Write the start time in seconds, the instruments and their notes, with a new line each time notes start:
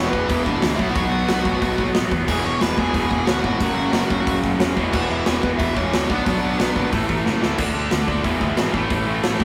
Already playing: distorted electric guitar E2 B2 E3
0.08 lead electric guitar B3 A4 B4
0.13 picked electric bass E1, distorted electric guitar E2 B2 E3, kick
0.27 picked electric bass E1, distorted electric guitar E2 B2 E3, lead electric guitar B3 B4, kick, open hi-hat
0.43 picked electric bass E1, distorted electric guitar E2 B2 E3, lead electric guitar D4 D5, kick
0.60 picked electric bass D2, distorted electric guitar E2 B2 E3, snare, open hi-hat
0.75 picked electric bass B1, distorted electric guitar B2 F#3 B3, lead electric guitar E5, kick
0.80 distorted electric guitar F#3 B3, lead electric guitar E4
0.91 distorted electric guitar B3, lead electric guitar F#5
0.95 picked electric bass B1, distorted electric guitar B2 F#3, lead electric guitar F#4, kick, open hi-hat
1.10 picked electric bass B1, distorted electric guitar B2 F#3 B3
1.26 picked electric bass B1, distorted electric guitar B2 F#3 B3, snare, open hi-hat
1.44 picked electric bass B1, distorted electric guitar B2 F#3 B3, kick
1.60 picked electric bass B1, distorted electric guitar B2 F#3 B3, kick, open hi-hat
1.77 picked electric bass B1, distorted electric guitar B2 F#3 B3, kick
1.93 picked electric bass A1, distorted electric guitar B2 F#3 B3, snare, open hi-hat
2.10 picked electric bass E2, distorted electric guitar B2 F#3 B3, kick
2.26 picked electric bass E1, distorted electric guitar E2 B2 E3, lead electric guitar G#4 G#5, kick, crash
2.43 picked electric bass E1, distorted electric guitar E2 B2 E3, lead electric guitar C#5 C#6
2.60 picked electric bass E1, distorted electric guitar E2 B2 E3, lead electric guitar B4 B5, snare, open hi-hat
2.77 picked electric bass E1, distorted electric guitar E2 B2 E3, lead electric guitar G#4 G#5, kick
2.94 picked electric bass E1, distorted electric guitar E2 B2 E3, kick, open hi-hat
3.10 picked electric bass E1, distorted electric guitar E2 B2 E3, lead electric guitar G#4 G#5, kick
3.26 picked electric bass D2, distorted electric guitar E2 B2 E3, lead electric guitar F#4 F#5, snare, open hi-hat
3.42 picked electric bass G#1, distorted electric guitar E2 B2 E3, lead electric guitar F#4 F#5, kick
3.60 picked electric bass F#1, distorted electric guitar F#2 C#3 F#3, kick, open hi-hat
3.75 picked electric bass F#1, distorted electric guitar F#2 C#3 F#3
3.91 picked electric bass F#1, distorted electric guitar F#2 C#3 F#3, snare, open hi-hat
4.08 picked electric bass F#1, distorted electric guitar F#2 C#3 F#3, kick
4.26 picked electric bass F#1, distorted electric guitar F#2 C#3 F#3, kick, open hi-hat
4.41 picked electric bass F#1, distorted electric guitar F#2 C#3 F#3, kick
4.58 picked electric bass E1, distorted electric guitar F#2 C#3 F#3, snare, open hi-hat
4.75 picked electric bass E1, distorted electric guitar E2 B2 E3, kick
4.92 picked electric bass E1, distorted electric guitar E2 B2 E3, lead electric guitar F#4 F#5, kick, crash
5.09 picked electric bass E1, distorted electric guitar E2 B2 E3, lead electric guitar E4 E5
5.25 picked electric bass E1, distorted electric guitar E2 B2 E3, lead electric guitar C#4 C#5, snare, open hi-hat
5.41 picked electric bass E1, distorted electric guitar E2 B2 E3, lead electric guitar B3 B4, kick
5.57 picked electric bass E1, distorted electric guitar E2 B2 E3, lead electric guitar E4 E5, kick, open hi-hat
5.74 picked electric bass E1, distorted electric guitar E2 B2 E3, lead electric guitar C#4 C#5, kick
5.91 picked electric bass D2, distorted electric guitar E2 B2 E3, snare, open hi-hat
6.08 picked electric bass B1, distorted electric guitar B2 F#3 B3, lead electric guitar D4 D5, kick
6.25 picked electric bass B1, distorted electric guitar B2 F#3 B3, lead electric guitar D4 D5, kick, open hi-hat
6.41 picked electric bass B1, distorted electric guitar B2 F#3 B3
6.57 picked electric bass B1, distorted electric guitar B2 F#3 B3, snare, open hi-hat
6.74 picked electric bass G#1, distorted electric guitar B2 F#3 B3, kick
6.91 picked electric bass A1, distorted electric guitar A2 E3 A3, kick, open hi-hat
7.07 picked electric bass A1, distorted electric guitar A2 E3 A3, kick
7.24 picked electric bass F#1, distorted electric guitar A2 E3 A3, snare
7.40 picked electric bass D2, distorted electric guitar A2 E3 A3, snare
7.56 picked electric bass D2, distorted electric guitar D3 A3 D4, kick, crash
7.74 picked electric bass D2, distorted electric guitar D3 A3 D4, overdriven electric guitar D3 A3 D4
7.90 picked electric bass D2, overdriven electric guitar D3 A3 D4, distorted electric guitar D3 A3 D4, snare, open hi-hat
8.07 picked electric bass D2, overdriven electric guitar D3 A3 D4, distorted electric guitar D3 A3 D4, kick
8.21 picked electric bass E1, distorted electric guitar E2 B2 E3, kick, open hi-hat
8.40 picked electric bass D2, distorted electric guitar E2 B2 E3, overdriven electric guitar E2 B2 E3, kick
8.57 picked electric bass G#1, overdriven electric guitar E2 B2 E3, distorted electric guitar E2 B2 E3, snare, open hi-hat
8.72 picked electric bass A1, distorted electric guitar A2 E3 A3, kick
8.90 picked electric bass A1, distorted electric guitar A2 E3 A3, overdriven electric guitar A2 E3 A3, kick, open hi-hat
9.06 picked electric bass A1, distorted electric guitar A2 E3 A3, overdriven electric guitar A2 E3 A3
9.23 picked electric bass A1, distorted electric guitar A2 E3 A3, overdriven electric guitar A2 E3 A3, snare, open hi-hat
9.40 picked electric bass A1, distorted electric guitar A2 E3 A3, overdriven electric guitar A2 E3 A3, kick